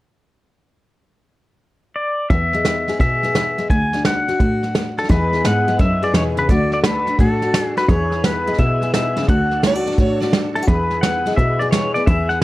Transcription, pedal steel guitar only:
1.96 D5
2.30 E5
3.01 E5
3.70 G#5
4.06 F#5
4.99 A4
5.11 B4
5.46 F#5
5.81 E5
6.04 D5
6.16 C#5
6.39 B4
6.50 D5
6.74 D5
6.85 B4
7.20 A4
7.63 G#4
7.78 B4
7.89 C#5
8.26 B4
8.59 E5
8.95 E5
9.29 F#5
10.55 A4
10.68 B4
11.01 F#5
11.36 E5
11.59 D5
11.71 C#5
11.94 D5
12.06 E5
12.29 F#5

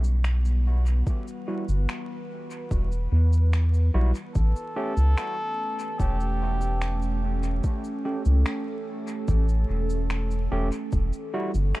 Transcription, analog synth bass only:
Already playing: B1
1.69 G1
2.71 E1
3.12 E2
3.94 B1
4.35 A1
4.97 C#2
6.00 E1
8.26 C#2
9.28 A1
9.69 E1
10.52 E1
10.93 E1
11.54 G1

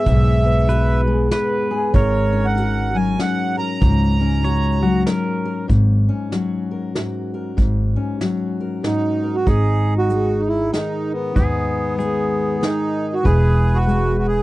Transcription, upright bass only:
0.07 B1
1.94 G#1
3.82 C#2
5.69 G#1
7.58 G#1
9.47 G#1
11.36 D#2
13.25 E1

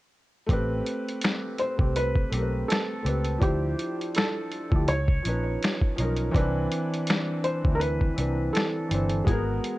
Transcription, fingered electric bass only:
0.49 A1
1.79 C2
2.32 B1
3.05 C#2
3.42 D2
4.72 D2
4.88 C#2
5.26 A#1
5.98 B1
6.35 C2
7.65 D2
8.18 C2
8.91 G1
9.27 G#1

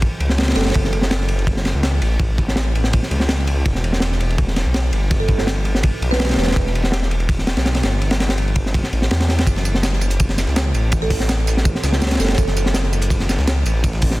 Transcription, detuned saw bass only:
0.20 C#2
0.56 F#1
0.76 F#1
1.65 F#1
1.75 C#2
2.02 A1
3.11 C#2
3.66 E1
4.56 E1
4.66 B1
4.92 G1
6.01 B1
6.38 E1
6.56 E1
7.47 E1
7.56 B1
7.83 G1
8.92 A1
9.11 E2
9.47 F#1
10.38 F#1
10.47 C#2
10.74 A1
11.83 C#2
12.20 F#1
12.38 F#1
13.29 F#1
13.38 C#2
13.65 A1

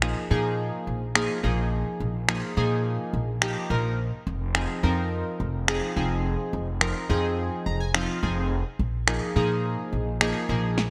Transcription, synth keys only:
0.02 F3 A#3 D#4 G#4
0.30 F3 A#3 D#4 G#4
1.15 F3 A#3 D#4 G#4
1.43 F3 A#3 D#4 G#4
2.29 F3 A#3 D#4 G#4
2.57 F3 A#3 D#4 G#4
3.42 F3 A#3 D#4 G4
3.70 F3 A#3 D#4 A#4
4.55 F3 C4 D#4 G#4
4.83 F3 C4 D#4 A#4
5.68 F3 C4 D#4 G#4
5.96 F3 C4 D#4 G#4
6.81 F3 C4 D#4 A#4
7.09 F3 C4 D#4 G#4
7.66 A#5
7.80 G#5
7.94 F3 C4 D#4 F4 F5
8.23 F3 C4 D#4 G#4
9.07 F3 A#3 D#4 G#4
9.36 F3 A#3 D#4 G#4
10.21 F3 A#3 D#4 G#4
10.49 F3 A#3 D#4 G#4

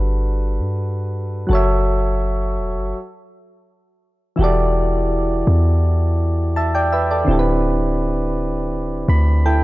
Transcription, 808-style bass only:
Already playing: G1
0.59 G2
1.50 F#1
2.58 E1
2.76 F#1
4.39 E1
5.47 E2
7.28 D1
9.08 D2

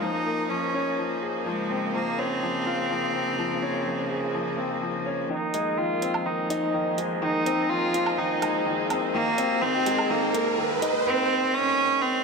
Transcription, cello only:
0.01 D#4
0.49 C#4
1.46 G#3
1.95 A#3
2.19 C4
5.30 D#4
5.78 F4
6.26 D#4
7.22 D#4
7.70 F4
8.18 D#4
9.14 A#3
9.62 C4
10.10 A#3
11.07 C4
11.54 C#4
12.02 C4

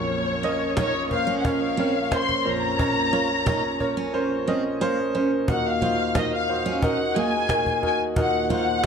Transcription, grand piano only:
Already playing: A#1 F2 C#4 A#4 C#5
0.43 C#4 A#4 D#5
0.77 C#4 A#4 C#5
1.11 C#4 A#4 C5
1.45 C#4 A#4 C#5
1.79 C#4 A#4 C#5
2.12 C#4 A#4 C5
2.45 A#1 F2 C#4 A#4 C5
2.79 C#4 A#4 C#5
3.12 C#4 A#4 C#5
3.46 C#4 A#4 C#5
3.80 C#4 A#4 C#5
4.14 C#4 A#4 C5
4.48 C#4 A#4 D#5
4.81 C#4 A#4 C5
5.15 C#4 A#4 C5
5.48 D#2 A#2 D#4 F#4 A#4
5.82 D#4 F#4 C5
6.15 D#4 F#4 A#4
6.49 D#4 F#4 C5
6.83 D#4 F#4 A#4
7.15 D#4 F#4 G#4
7.49 D#4 F#4 A#4
7.82 D#4 F#4 A#4
8.16 D#2 A#2 D#4 F#4 A#4
8.50 D#4 F#4 C5

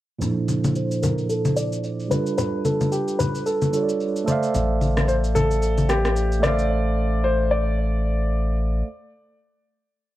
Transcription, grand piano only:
0.76 C5
1.02 A#4
1.30 A4
1.56 D5
2.11 B4
2.38 B4
2.65 A4
2.92 G4
3.19 B4
3.46 A4
5.08 C5
5.35 A4
5.89 G4
6.43 D5
7.24 C5
7.51 D5

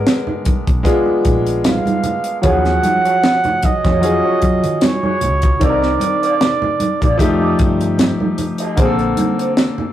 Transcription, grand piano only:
Already playing: G#3 B3 D4 A#4
0.83 G#3 B3 D4 F4
2.42 F3 F#3 C#4 G#4
4.01 F#3 C#4 F4 G#4
5.59 D#3 C4 D4 A4
5.69 A#4
7.18 F3 A3 D#4 G4
8.76 D3 A#3 C4 G#4
8.86 A4

